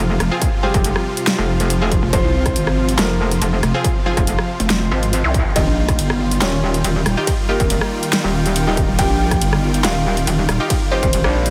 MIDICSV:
0, 0, Header, 1, 9, 480
1, 0, Start_track
1, 0, Tempo, 428571
1, 465, Time_signature, 4, 2, 24, 8
1, 12882, End_track
2, 0, Start_track
2, 0, Title_t, "Ambient pad"
2, 0, Program_c, 0, 92
2, 0, Note_on_c, 0, 65, 84
2, 0, Note_on_c, 0, 77, 77
2, 0, Note_on_c, 0, 84, 88
2, 189, Note_off_c, 0, 77, 0
2, 2868, Note_on_c, 0, 79, 78
2, 6227, Note_on_c, 0, 63, 74
2, 6831, Note_on_c, 0, 77, 84
2, 6863, Note_on_c, 0, 70, 67
2, 7317, Note_off_c, 0, 65, 0
2, 7880, Note_off_c, 0, 84, 0
2, 12882, Note_off_c, 0, 63, 0
2, 12882, Note_off_c, 0, 70, 0
2, 12882, Note_off_c, 0, 77, 0
2, 12882, Note_off_c, 0, 79, 0
2, 12882, End_track
3, 0, Start_track
3, 0, Title_t, "Grand piano"
3, 0, Program_c, 1, 0
3, 705, Note_on_c, 1, 55, 77
3, 705, Note_on_c, 1, 67, 94
3, 2294, Note_off_c, 1, 55, 0
3, 2294, Note_off_c, 1, 67, 0
3, 2385, Note_on_c, 1, 60, 80
3, 2385, Note_on_c, 1, 72, 105
3, 3254, Note_off_c, 1, 60, 0
3, 3254, Note_off_c, 1, 72, 0
3, 3345, Note_on_c, 1, 58, 78
3, 3345, Note_on_c, 1, 70, 93
3, 3770, Note_off_c, 1, 58, 0
3, 3770, Note_off_c, 1, 70, 0
3, 4546, Note_on_c, 1, 53, 78
3, 4546, Note_on_c, 1, 65, 97
3, 6134, Note_off_c, 1, 65, 0
3, 6135, Note_off_c, 1, 53, 0
3, 6226, Note_on_c, 1, 63, 80
3, 6226, Note_on_c, 1, 75, 100
3, 7094, Note_off_c, 1, 63, 0
3, 7094, Note_off_c, 1, 75, 0
3, 7185, Note_on_c, 1, 73, 89
3, 7186, Note_on_c, 1, 61, 79
3, 7610, Note_off_c, 1, 61, 0
3, 7610, Note_off_c, 1, 73, 0
3, 8385, Note_on_c, 1, 58, 80
3, 8385, Note_on_c, 1, 70, 92
3, 9974, Note_off_c, 1, 58, 0
3, 9974, Note_off_c, 1, 70, 0
3, 10065, Note_on_c, 1, 67, 82
3, 10065, Note_on_c, 1, 79, 101
3, 10934, Note_off_c, 1, 67, 0
3, 10934, Note_off_c, 1, 79, 0
3, 11025, Note_on_c, 1, 65, 81
3, 11025, Note_on_c, 1, 77, 93
3, 11450, Note_off_c, 1, 65, 0
3, 11450, Note_off_c, 1, 77, 0
3, 12225, Note_on_c, 1, 72, 94
3, 12226, Note_on_c, 1, 60, 77
3, 12882, Note_off_c, 1, 60, 0
3, 12882, Note_off_c, 1, 72, 0
3, 12882, End_track
4, 0, Start_track
4, 0, Title_t, "Synth stab"
4, 0, Program_c, 2, 62
4, 352, Note_on_c, 2, 60, 96
4, 352, Note_on_c, 2, 65, 95
4, 352, Note_on_c, 2, 68, 106
4, 476, Note_off_c, 2, 60, 0
4, 476, Note_off_c, 2, 65, 0
4, 476, Note_off_c, 2, 68, 0
4, 705, Note_on_c, 2, 60, 96
4, 705, Note_on_c, 2, 65, 87
4, 705, Note_on_c, 2, 68, 109
4, 840, Note_off_c, 2, 60, 0
4, 840, Note_off_c, 2, 65, 0
4, 840, Note_off_c, 2, 68, 0
4, 2032, Note_on_c, 2, 60, 82
4, 2032, Note_on_c, 2, 65, 78
4, 2032, Note_on_c, 2, 68, 91
4, 2108, Note_off_c, 2, 60, 0
4, 2108, Note_off_c, 2, 65, 0
4, 2109, Note_off_c, 2, 68, 0
4, 4191, Note_on_c, 2, 60, 101
4, 4191, Note_on_c, 2, 65, 88
4, 4191, Note_on_c, 2, 68, 111
4, 4315, Note_off_c, 2, 60, 0
4, 4315, Note_off_c, 2, 68, 0
4, 4316, Note_off_c, 2, 65, 0
4, 4545, Note_on_c, 2, 60, 99
4, 4545, Note_on_c, 2, 65, 92
4, 4545, Note_on_c, 2, 68, 107
4, 4680, Note_off_c, 2, 60, 0
4, 4681, Note_off_c, 2, 65, 0
4, 4681, Note_off_c, 2, 68, 0
4, 8031, Note_on_c, 2, 63, 101
4, 8031, Note_on_c, 2, 67, 108
4, 8032, Note_on_c, 2, 65, 95
4, 8156, Note_off_c, 2, 63, 0
4, 8156, Note_off_c, 2, 65, 0
4, 8156, Note_off_c, 2, 67, 0
4, 8385, Note_on_c, 2, 63, 94
4, 8385, Note_on_c, 2, 65, 90
4, 8385, Note_on_c, 2, 67, 106
4, 8520, Note_off_c, 2, 63, 0
4, 8520, Note_off_c, 2, 65, 0
4, 8521, Note_off_c, 2, 67, 0
4, 9711, Note_on_c, 2, 63, 81
4, 9711, Note_on_c, 2, 65, 74
4, 9711, Note_on_c, 2, 67, 92
4, 9788, Note_off_c, 2, 63, 0
4, 9788, Note_off_c, 2, 65, 0
4, 9788, Note_off_c, 2, 67, 0
4, 11871, Note_on_c, 2, 63, 101
4, 11871, Note_on_c, 2, 65, 91
4, 11871, Note_on_c, 2, 67, 105
4, 11995, Note_off_c, 2, 67, 0
4, 11996, Note_off_c, 2, 63, 0
4, 11996, Note_off_c, 2, 65, 0
4, 12225, Note_on_c, 2, 63, 98
4, 12225, Note_on_c, 2, 65, 88
4, 12225, Note_on_c, 2, 67, 111
4, 12360, Note_off_c, 2, 63, 0
4, 12360, Note_off_c, 2, 65, 0
4, 12360, Note_off_c, 2, 67, 0
4, 12882, End_track
5, 0, Start_track
5, 0, Title_t, "Supersaw synth"
5, 0, Program_c, 3, 81
5, 0, Note_on_c, 3, 48, 88
5, 0, Note_on_c, 3, 53, 81
5, 0, Note_on_c, 3, 65, 93
5, 6180, Note_off_c, 3, 65, 0
5, 6181, Note_off_c, 3, 48, 0
5, 6181, Note_off_c, 3, 53, 0
5, 6225, Note_on_c, 3, 65, 93
5, 6226, Note_on_c, 3, 51, 89
5, 6226, Note_on_c, 3, 55, 81
5, 12882, Note_off_c, 3, 51, 0
5, 12882, Note_off_c, 3, 55, 0
5, 12882, Note_off_c, 3, 65, 0
5, 12882, End_track
6, 0, Start_track
6, 0, Title_t, "Wobble bass"
6, 0, Program_c, 4, 39
6, 0, Note_on_c, 4, 29, 94
6, 207, Note_off_c, 4, 29, 0
6, 831, Note_on_c, 4, 29, 99
6, 1051, Note_off_c, 4, 29, 0
6, 1551, Note_on_c, 4, 29, 98
6, 2251, Note_off_c, 4, 29, 0
6, 2385, Note_on_c, 4, 29, 99
6, 2491, Note_off_c, 4, 29, 0
6, 3345, Note_on_c, 4, 29, 102
6, 3807, Note_off_c, 4, 29, 0
6, 3826, Note_on_c, 4, 29, 95
6, 4047, Note_off_c, 4, 29, 0
6, 4671, Note_on_c, 4, 29, 96
6, 4891, Note_off_c, 4, 29, 0
6, 5505, Note_on_c, 4, 32, 101
6, 5851, Note_off_c, 4, 32, 0
6, 5872, Note_on_c, 4, 36, 98
6, 6091, Note_off_c, 4, 36, 0
6, 6225, Note_on_c, 4, 27, 95
6, 6331, Note_off_c, 4, 27, 0
6, 7185, Note_on_c, 4, 27, 102
6, 7647, Note_off_c, 4, 27, 0
6, 7665, Note_on_c, 4, 27, 99
6, 7887, Note_off_c, 4, 27, 0
6, 8511, Note_on_c, 4, 27, 99
6, 8731, Note_off_c, 4, 27, 0
6, 9231, Note_on_c, 4, 27, 101
6, 9931, Note_off_c, 4, 27, 0
6, 10065, Note_on_c, 4, 27, 96
6, 10171, Note_off_c, 4, 27, 0
6, 11025, Note_on_c, 4, 27, 96
6, 11487, Note_off_c, 4, 27, 0
6, 11505, Note_on_c, 4, 27, 98
6, 11727, Note_off_c, 4, 27, 0
6, 12351, Note_on_c, 4, 27, 97
6, 12571, Note_off_c, 4, 27, 0
6, 12591, Note_on_c, 4, 34, 98
6, 12882, Note_off_c, 4, 34, 0
6, 12882, End_track
7, 0, Start_track
7, 0, Title_t, "Wobble bass"
7, 0, Program_c, 5, 39
7, 226, Note_on_c, 5, 29, 96
7, 331, Note_off_c, 5, 29, 0
7, 2272, Note_on_c, 5, 29, 98
7, 2367, Note_off_c, 5, 29, 0
7, 2512, Note_on_c, 5, 36, 101
7, 2847, Note_off_c, 5, 36, 0
7, 2866, Note_on_c, 5, 32, 95
7, 3327, Note_off_c, 5, 32, 0
7, 4065, Note_on_c, 5, 29, 98
7, 4171, Note_off_c, 5, 29, 0
7, 5152, Note_on_c, 5, 29, 99
7, 5487, Note_off_c, 5, 29, 0
7, 6352, Note_on_c, 5, 34, 103
7, 6687, Note_off_c, 5, 34, 0
7, 6705, Note_on_c, 5, 31, 94
7, 7167, Note_off_c, 5, 31, 0
7, 7906, Note_on_c, 5, 27, 98
7, 8012, Note_off_c, 5, 27, 0
7, 9951, Note_on_c, 5, 27, 97
7, 10047, Note_off_c, 5, 27, 0
7, 10191, Note_on_c, 5, 34, 106
7, 10527, Note_off_c, 5, 34, 0
7, 10545, Note_on_c, 5, 31, 97
7, 11007, Note_off_c, 5, 31, 0
7, 11746, Note_on_c, 5, 27, 97
7, 11851, Note_off_c, 5, 27, 0
7, 12882, End_track
8, 0, Start_track
8, 0, Title_t, "Zap"
8, 0, Program_c, 6, 103
8, 5871, Note_on_c, 6, 60, 61
8, 5985, Note_off_c, 6, 60, 0
8, 12882, End_track
9, 0, Start_track
9, 0, Title_t, "Drums"
9, 226, Note_on_c, 9, 37, 80
9, 226, Note_on_c, 9, 42, 55
9, 338, Note_off_c, 9, 37, 0
9, 338, Note_off_c, 9, 42, 0
9, 465, Note_on_c, 9, 36, 119
9, 466, Note_on_c, 9, 42, 84
9, 577, Note_off_c, 9, 36, 0
9, 578, Note_off_c, 9, 42, 0
9, 831, Note_on_c, 9, 36, 112
9, 832, Note_on_c, 9, 42, 53
9, 943, Note_off_c, 9, 36, 0
9, 944, Note_off_c, 9, 42, 0
9, 946, Note_on_c, 9, 42, 87
9, 1058, Note_off_c, 9, 42, 0
9, 1072, Note_on_c, 9, 37, 76
9, 1184, Note_off_c, 9, 37, 0
9, 1312, Note_on_c, 9, 42, 60
9, 1424, Note_off_c, 9, 42, 0
9, 1426, Note_on_c, 9, 38, 125
9, 1426, Note_on_c, 9, 42, 84
9, 1538, Note_off_c, 9, 38, 0
9, 1538, Note_off_c, 9, 42, 0
9, 1792, Note_on_c, 9, 42, 56
9, 1904, Note_off_c, 9, 42, 0
9, 1906, Note_on_c, 9, 42, 85
9, 2018, Note_off_c, 9, 42, 0
9, 2145, Note_on_c, 9, 36, 105
9, 2146, Note_on_c, 9, 42, 58
9, 2257, Note_off_c, 9, 36, 0
9, 2258, Note_off_c, 9, 42, 0
9, 2385, Note_on_c, 9, 36, 123
9, 2386, Note_on_c, 9, 42, 82
9, 2497, Note_off_c, 9, 36, 0
9, 2498, Note_off_c, 9, 42, 0
9, 2752, Note_on_c, 9, 36, 112
9, 2752, Note_on_c, 9, 37, 59
9, 2752, Note_on_c, 9, 42, 55
9, 2864, Note_off_c, 9, 36, 0
9, 2864, Note_off_c, 9, 37, 0
9, 2864, Note_off_c, 9, 42, 0
9, 2866, Note_on_c, 9, 42, 85
9, 2978, Note_off_c, 9, 42, 0
9, 2992, Note_on_c, 9, 37, 79
9, 3104, Note_off_c, 9, 37, 0
9, 3232, Note_on_c, 9, 42, 59
9, 3344, Note_off_c, 9, 42, 0
9, 3346, Note_on_c, 9, 38, 127
9, 3346, Note_on_c, 9, 42, 83
9, 3458, Note_off_c, 9, 38, 0
9, 3458, Note_off_c, 9, 42, 0
9, 3712, Note_on_c, 9, 42, 56
9, 3824, Note_off_c, 9, 42, 0
9, 3826, Note_on_c, 9, 42, 86
9, 3938, Note_off_c, 9, 42, 0
9, 4066, Note_on_c, 9, 37, 78
9, 4066, Note_on_c, 9, 42, 55
9, 4178, Note_off_c, 9, 37, 0
9, 4178, Note_off_c, 9, 42, 0
9, 4306, Note_on_c, 9, 36, 119
9, 4306, Note_on_c, 9, 42, 81
9, 4418, Note_off_c, 9, 36, 0
9, 4418, Note_off_c, 9, 42, 0
9, 4672, Note_on_c, 9, 36, 106
9, 4672, Note_on_c, 9, 42, 51
9, 4784, Note_off_c, 9, 36, 0
9, 4784, Note_off_c, 9, 42, 0
9, 4786, Note_on_c, 9, 42, 78
9, 4898, Note_off_c, 9, 42, 0
9, 4912, Note_on_c, 9, 37, 76
9, 5024, Note_off_c, 9, 37, 0
9, 5152, Note_on_c, 9, 42, 58
9, 5264, Note_off_c, 9, 42, 0
9, 5265, Note_on_c, 9, 38, 127
9, 5265, Note_on_c, 9, 42, 79
9, 5377, Note_off_c, 9, 38, 0
9, 5377, Note_off_c, 9, 42, 0
9, 5632, Note_on_c, 9, 42, 51
9, 5744, Note_off_c, 9, 42, 0
9, 5746, Note_on_c, 9, 42, 82
9, 5858, Note_off_c, 9, 42, 0
9, 5985, Note_on_c, 9, 36, 109
9, 5986, Note_on_c, 9, 42, 52
9, 6097, Note_off_c, 9, 36, 0
9, 6098, Note_off_c, 9, 42, 0
9, 6225, Note_on_c, 9, 36, 125
9, 6226, Note_on_c, 9, 42, 77
9, 6226, Note_on_c, 9, 51, 65
9, 6337, Note_off_c, 9, 36, 0
9, 6338, Note_off_c, 9, 42, 0
9, 6338, Note_off_c, 9, 51, 0
9, 6592, Note_on_c, 9, 36, 109
9, 6592, Note_on_c, 9, 37, 60
9, 6592, Note_on_c, 9, 42, 50
9, 6704, Note_off_c, 9, 36, 0
9, 6704, Note_off_c, 9, 37, 0
9, 6704, Note_off_c, 9, 42, 0
9, 6706, Note_on_c, 9, 42, 77
9, 6706, Note_on_c, 9, 51, 45
9, 6818, Note_off_c, 9, 42, 0
9, 6818, Note_off_c, 9, 51, 0
9, 6832, Note_on_c, 9, 37, 80
9, 6944, Note_off_c, 9, 37, 0
9, 7072, Note_on_c, 9, 42, 56
9, 7184, Note_off_c, 9, 42, 0
9, 7186, Note_on_c, 9, 38, 126
9, 7186, Note_on_c, 9, 42, 78
9, 7186, Note_on_c, 9, 51, 66
9, 7298, Note_off_c, 9, 38, 0
9, 7298, Note_off_c, 9, 42, 0
9, 7298, Note_off_c, 9, 51, 0
9, 7552, Note_on_c, 9, 42, 51
9, 7664, Note_off_c, 9, 42, 0
9, 7666, Note_on_c, 9, 42, 82
9, 7666, Note_on_c, 9, 51, 47
9, 7778, Note_off_c, 9, 42, 0
9, 7778, Note_off_c, 9, 51, 0
9, 7906, Note_on_c, 9, 37, 85
9, 7906, Note_on_c, 9, 42, 52
9, 8018, Note_off_c, 9, 37, 0
9, 8018, Note_off_c, 9, 42, 0
9, 8145, Note_on_c, 9, 36, 117
9, 8146, Note_on_c, 9, 42, 78
9, 8146, Note_on_c, 9, 51, 65
9, 8257, Note_off_c, 9, 36, 0
9, 8258, Note_off_c, 9, 42, 0
9, 8258, Note_off_c, 9, 51, 0
9, 8511, Note_on_c, 9, 36, 102
9, 8512, Note_on_c, 9, 42, 50
9, 8623, Note_off_c, 9, 36, 0
9, 8624, Note_off_c, 9, 42, 0
9, 8626, Note_on_c, 9, 42, 77
9, 8626, Note_on_c, 9, 51, 47
9, 8738, Note_off_c, 9, 42, 0
9, 8738, Note_off_c, 9, 51, 0
9, 8752, Note_on_c, 9, 37, 84
9, 8864, Note_off_c, 9, 37, 0
9, 8992, Note_on_c, 9, 42, 56
9, 9104, Note_off_c, 9, 42, 0
9, 9106, Note_on_c, 9, 38, 121
9, 9106, Note_on_c, 9, 42, 78
9, 9106, Note_on_c, 9, 51, 69
9, 9218, Note_off_c, 9, 38, 0
9, 9218, Note_off_c, 9, 42, 0
9, 9218, Note_off_c, 9, 51, 0
9, 9472, Note_on_c, 9, 42, 52
9, 9584, Note_off_c, 9, 42, 0
9, 9585, Note_on_c, 9, 42, 81
9, 9585, Note_on_c, 9, 51, 49
9, 9697, Note_off_c, 9, 42, 0
9, 9697, Note_off_c, 9, 51, 0
9, 9825, Note_on_c, 9, 36, 102
9, 9825, Note_on_c, 9, 42, 52
9, 9937, Note_off_c, 9, 36, 0
9, 9937, Note_off_c, 9, 42, 0
9, 10065, Note_on_c, 9, 36, 120
9, 10065, Note_on_c, 9, 42, 81
9, 10065, Note_on_c, 9, 51, 71
9, 10177, Note_off_c, 9, 36, 0
9, 10177, Note_off_c, 9, 42, 0
9, 10177, Note_off_c, 9, 51, 0
9, 10431, Note_on_c, 9, 36, 104
9, 10431, Note_on_c, 9, 37, 65
9, 10431, Note_on_c, 9, 42, 49
9, 10543, Note_off_c, 9, 36, 0
9, 10543, Note_off_c, 9, 37, 0
9, 10543, Note_off_c, 9, 42, 0
9, 10545, Note_on_c, 9, 42, 79
9, 10545, Note_on_c, 9, 51, 49
9, 10657, Note_off_c, 9, 42, 0
9, 10657, Note_off_c, 9, 51, 0
9, 10671, Note_on_c, 9, 37, 88
9, 10783, Note_off_c, 9, 37, 0
9, 10911, Note_on_c, 9, 42, 56
9, 11023, Note_off_c, 9, 42, 0
9, 11026, Note_on_c, 9, 38, 114
9, 11026, Note_on_c, 9, 42, 77
9, 11026, Note_on_c, 9, 51, 68
9, 11138, Note_off_c, 9, 38, 0
9, 11138, Note_off_c, 9, 42, 0
9, 11138, Note_off_c, 9, 51, 0
9, 11392, Note_on_c, 9, 42, 51
9, 11504, Note_off_c, 9, 42, 0
9, 11506, Note_on_c, 9, 42, 80
9, 11506, Note_on_c, 9, 51, 51
9, 11618, Note_off_c, 9, 42, 0
9, 11618, Note_off_c, 9, 51, 0
9, 11746, Note_on_c, 9, 37, 83
9, 11746, Note_on_c, 9, 42, 51
9, 11858, Note_off_c, 9, 37, 0
9, 11858, Note_off_c, 9, 42, 0
9, 11985, Note_on_c, 9, 36, 115
9, 11986, Note_on_c, 9, 42, 84
9, 11986, Note_on_c, 9, 51, 71
9, 12097, Note_off_c, 9, 36, 0
9, 12098, Note_off_c, 9, 42, 0
9, 12098, Note_off_c, 9, 51, 0
9, 12351, Note_on_c, 9, 36, 104
9, 12352, Note_on_c, 9, 42, 53
9, 12463, Note_off_c, 9, 36, 0
9, 12464, Note_off_c, 9, 42, 0
9, 12466, Note_on_c, 9, 42, 83
9, 12466, Note_on_c, 9, 51, 51
9, 12578, Note_off_c, 9, 42, 0
9, 12578, Note_off_c, 9, 51, 0
9, 12592, Note_on_c, 9, 37, 86
9, 12704, Note_off_c, 9, 37, 0
9, 12832, Note_on_c, 9, 42, 59
9, 12882, Note_off_c, 9, 42, 0
9, 12882, End_track
0, 0, End_of_file